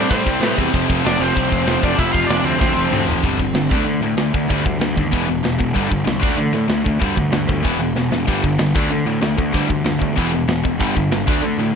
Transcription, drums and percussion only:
0.11 kick loud
0.11 crash medium
0.27 kick medium
0.43 snare loud
0.43 crash medium
0.58 kick medium
0.74 kick loud
0.74 crash medium
0.90 kick medium
1.07 snare loud
1.07 crash medium
1.37 kick loud
1.37 crash medium
1.52 kick medium
1.68 snare loud
1.68 crash medium
1.83 kick medium
1.99 kick loud
1.99 crash medium
2.14 kick medium
2.31 snare loud
2.31 crash medium
2.61 kick loud
2.61 snare medium
2.77 high tom medium
2.93 mid tom medium
3.08 floor tom medium
3.24 kick loud
3.24 open hi-hat medium
3.39 kick medium
3.39 open hi-hat medium
3.55 snare loud
3.55 open hi-hat medium
3.71 kick medium
3.71 open hi-hat medium
3.87 open hi-hat medium
4.03 open hi-hat medium
4.18 snare loud
4.18 open hi-hat medium
4.34 kick medium
4.34 open hi-hat medium
4.50 kick loud
4.50 open hi-hat medium
4.66 kick medium
4.66 open hi-hat medium
4.81 snare loud
4.81 open hi-hat medium
4.97 kick medium
4.97 open hi-hat medium
5.13 kick loud
5.13 open hi-hat medium
5.29 open hi-hat medium
5.45 snare medium
5.45 open hi-hat medium
5.60 kick medium
5.60 open hi-hat medium
5.76 kick medium
5.76 open hi-hat medium
5.92 kick medium
6.07 snare loud
6.07 open hi-hat medium
6.23 kick loud
6.23 open hi-hat medium
6.38 open hi-hat medium
6.54 open hi-hat medium
6.70 snare loud
6.70 open hi-hat medium
6.86 kick medium
6.86 open hi-hat medium
7.02 kick loud
7.02 open hi-hat medium
7.17 kick medium
7.17 open hi-hat medium
7.33 snare loud
7.33 open hi-hat medium
7.49 kick medium
7.49 open hi-hat medium
7.65 kick medium
7.65 open hi-hat medium
7.80 open hi-hat medium
7.96 snare medium
8.12 snare medium
8.28 kick loud
8.28 open hi-hat medium
8.43 kick medium
8.43 open hi-hat medium
8.59 snare loud
8.59 open hi-hat medium
8.76 kick loud
8.76 open hi-hat medium
8.91 open hi-hat medium
9.07 open hi-hat medium
9.23 snare loud
9.23 open hi-hat medium
9.38 kick medium
9.38 open hi-hat soft
9.54 kick loud
9.54 open hi-hat medium
9.70 kick medium
9.70 open hi-hat medium
9.86 snare loud
9.86 open hi-hat medium
10.02 kick medium
10.02 open hi-hat soft
10.18 kick loud
10.18 open hi-hat medium
10.33 open hi-hat medium
10.49 snare loud
10.49 open hi-hat medium
10.65 kick medium
10.65 open hi-hat medium
10.81 kick loud
10.81 open hi-hat medium
10.97 kick medium
10.97 open hi-hat medium
11.12 snare loud
11.12 open hi-hat medium
11.28 kick loud
11.28 open hi-hat medium
11.44 open hi-hat medium
11.60 open hi-hat medium

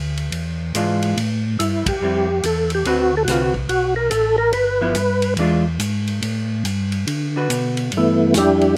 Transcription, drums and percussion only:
0.17 ride soft
0.32 ride medium
0.75 hi-hat pedal soft
0.75 ride medium
1.02 ride soft
1.17 ride medium
1.60 hi-hat pedal soft
1.60 ride medium
1.86 kick medium
1.86 ride medium
2.43 hi-hat pedal soft
2.43 ride medium
2.70 ride soft
2.85 ride medium
3.28 snare soft
3.28 hi-hat pedal soft
3.28 ride medium
3.54 kick medium
3.69 ride medium
4.11 hi-hat pedal soft
4.11 ride medium
4.53 ride soft
4.95 hi-hat pedal soft
4.95 ride medium
5.22 ride soft
5.37 ride medium
5.80 hi-hat pedal medium
5.80 ride medium
6.08 ride soft
6.22 ride medium
6.65 hi-hat pedal soft
6.65 ride medium
6.92 ride soft
7.07 ride medium
7.50 hi-hat pedal medium
7.50 ride medium
7.77 ride soft
7.92 ride medium
8.34 snare medium
8.34 hi-hat pedal soft
8.34 ride medium
8.61 ride soft

